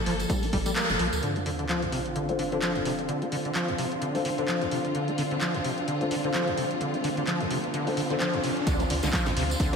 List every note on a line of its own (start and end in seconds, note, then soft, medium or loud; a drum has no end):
0.00 1.19 F3 medium
0.00 1.19 A#3 medium
0.00 1.19 A4 medium
0.06 0.26 G1 medium
0.06 0.14 F3 medium
0.06 clap soft
0.06 open hi-hat loud
0.20 closed hi-hat soft
0.20 tambourine medium
0.30 0.44 G3 medium
0.30 kick loud
0.30 closed hi-hat loud
0.30 tambourine medium
0.43 0.46 G4 loud
0.43 open hi-hat medium
0.43 tambourine soft
0.53 0.64 G1 loud
0.53 0.57 G3 loud
0.53 kick medium
0.53 open hi-hat loud
0.66 0.72 G3 medium
0.66 closed hi-hat soft
0.66 tambourine medium
0.76 0.91 A#3 loud
0.76 clap loud
0.76 closed hi-hat loud
0.76 tambourine medium
0.89 0.97 F1 loud
0.89 0.95 G2 medium
0.89 closed hi-hat soft
0.89 tambourine soft
0.99 1.10 A#1 loud
0.99 1.07 F3 medium
0.99 open hi-hat loud
1.13 1.21 D2 medium
1.13 closed hi-hat soft
1.13 tambourine medium
1.23 1.37 D3 medium
1.23 8.63 D3 medium
1.23 8.63 C4 medium
1.23 8.63 F4 medium
1.23 closed hi-hat medium
1.23 sub drop medium
1.36 1.39 D4 loud
1.36 closed hi-hat soft
1.46 1.50 D3 loud
1.46 open hi-hat loud
1.59 1.65 D3 medium
1.59 closed hi-hat soft
1.69 1.84 F3 medium
1.69 clap loud
1.69 closed hi-hat medium
1.82 1.88 D2 medium
1.82 closed hi-hat soft
1.92 2.00 C3 medium
1.92 open hi-hat loud
2.06 closed hi-hat soft
2.16 2.30 D3 medium
2.16 closed hi-hat medium
2.29 2.32 D4 loud
2.29 2.35 D4 medium
2.29 2.35 F4 medium
2.29 2.35 A4 medium
2.29 2.35 C5 medium
2.29 closed hi-hat soft
2.39 2.43 D3 loud
2.39 open hi-hat loud
2.52 2.58 D3 medium
2.52 4.12 D4 medium
2.52 4.12 F4 medium
2.52 4.12 A4 medium
2.52 4.12 C5 medium
2.52 closed hi-hat soft
2.62 2.77 F3 loud
2.62 clap loud
2.62 closed hi-hat loud
2.75 2.81 D2 medium
2.75 closed hi-hat soft
2.85 2.93 C3 medium
2.85 open hi-hat loud
2.99 closed hi-hat soft
3.09 3.23 D3 medium
3.09 closed hi-hat medium
3.22 3.25 D4 loud
3.22 closed hi-hat soft
3.32 3.36 D3 loud
3.32 open hi-hat loud
3.45 3.51 D3 medium
3.45 closed hi-hat soft
3.55 3.70 F3 loud
3.55 clap loud
3.55 closed hi-hat medium
3.68 3.74 D2 medium
3.68 closed hi-hat soft
3.78 3.86 C3 medium
3.78 open hi-hat loud
3.92 closed hi-hat soft
4.02 4.16 D3 medium
4.02 closed hi-hat medium
4.15 4.21 D4 medium
4.15 4.18 D4 loud
4.15 4.21 F4 medium
4.15 4.21 A4 medium
4.15 4.21 C5 loud
4.15 open hi-hat medium
4.25 4.29 D3 loud
4.25 open hi-hat loud
4.38 4.44 D3 medium
4.38 5.98 D4 medium
4.38 5.98 F4 medium
4.38 5.98 A4 medium
4.38 5.98 C5 medium
4.38 closed hi-hat soft
4.48 4.63 F3 loud
4.48 clap loud
4.48 closed hi-hat medium
4.61 4.67 D2 medium
4.61 closed hi-hat soft
4.71 4.79 C3 medium
4.71 open hi-hat loud
4.85 closed hi-hat soft
4.95 5.09 D3 medium
4.95 closed hi-hat medium
4.95 riser medium
5.08 5.11 D4 loud
5.08 closed hi-hat soft
5.18 5.22 D3 loud
5.18 open hi-hat loud
5.31 5.37 D3 medium
5.31 closed hi-hat soft
5.41 5.56 F3 medium
5.41 clap loud
5.41 closed hi-hat medium
5.54 5.60 D2 medium
5.54 closed hi-hat soft
5.64 5.72 C3 medium
5.64 open hi-hat loud
5.78 closed hi-hat soft
5.88 6.02 D3 medium
5.88 closed hi-hat medium
6.01 6.07 D4 medium
6.01 6.04 D4 loud
6.01 6.07 F4 medium
6.01 6.07 A4 medium
6.01 6.07 C5 medium
6.01 closed hi-hat soft
6.11 6.15 D3 loud
6.11 open hi-hat loud
6.24 6.30 D3 medium
6.24 7.84 D4 medium
6.24 7.84 F4 medium
6.24 7.84 A4 medium
6.24 7.84 C5 medium
6.24 closed hi-hat soft
6.34 6.49 F3 loud
6.34 clap loud
6.34 closed hi-hat medium
6.47 6.53 D2 medium
6.47 closed hi-hat soft
6.58 6.65 C3 medium
6.58 open hi-hat loud
6.71 closed hi-hat soft
6.81 6.95 D3 medium
6.81 closed hi-hat medium
6.94 6.97 D4 loud
6.94 closed hi-hat soft
7.04 7.08 D3 loud
7.04 open hi-hat loud
7.17 7.23 D3 medium
7.17 closed hi-hat soft
7.27 7.42 F3 medium
7.27 clap loud
7.27 closed hi-hat medium
7.41 7.46 D2 medium
7.41 closed hi-hat soft
7.51 7.58 C3 medium
7.51 open hi-hat loud
7.64 closed hi-hat soft
7.74 7.88 D3 medium
7.74 closed hi-hat medium
7.87 7.90 D4 loud
7.87 7.93 D4 medium
7.87 7.93 F4 medium
7.87 7.93 A4 medium
7.87 7.93 C5 medium
7.87 open hi-hat medium
7.97 8.01 D3 loud
7.97 open hi-hat loud
8.10 8.16 D3 medium
8.10 8.66 D4 medium
8.10 8.66 F4 medium
8.10 8.66 A4 medium
8.10 8.66 C5 medium
8.10 closed hi-hat soft
8.20 8.35 F3 loud
8.20 clap loud
8.20 closed hi-hat medium
8.34 8.39 D2 medium
8.34 closed hi-hat soft
8.44 8.51 C3 medium
8.44 open hi-hat loud
8.57 closed hi-hat soft
8.67 8.86 D2 loud
8.67 9.76 D3 medium
8.67 8.82 D3 medium
8.67 9.76 C4 medium
8.67 9.76 F4 medium
8.67 kick loud
8.67 closed hi-hat loud
8.67 ride medium
8.67 tambourine medium
8.79 8.83 D4 loud
8.79 closed hi-hat soft
8.79 tambourine soft
8.90 9.01 D2 medium
8.90 8.94 D3 loud
8.90 open hi-hat loud
8.90 ride medium
9.03 9.11 C2 medium
9.03 9.09 D3 medium
9.03 snare medium
9.03 closed hi-hat soft
9.03 tambourine medium
9.13 9.28 F3 loud
9.13 kick loud
9.13 clap loud
9.13 closed hi-hat medium
9.13 ride medium
9.13 tambourine medium
9.26 9.32 D2 medium
9.26 snare medium
9.26 closed hi-hat soft
9.26 tambourine soft
9.37 9.56 D2 medium
9.37 9.44 C3 medium
9.37 open hi-hat loud
9.37 ride medium
9.50 closed hi-hat soft
9.50 tambourine medium
9.60 9.70 D2 loud
9.60 9.75 D3 medium
9.60 kick loud
9.60 closed hi-hat loud
9.60 ride medium
9.60 tambourine medium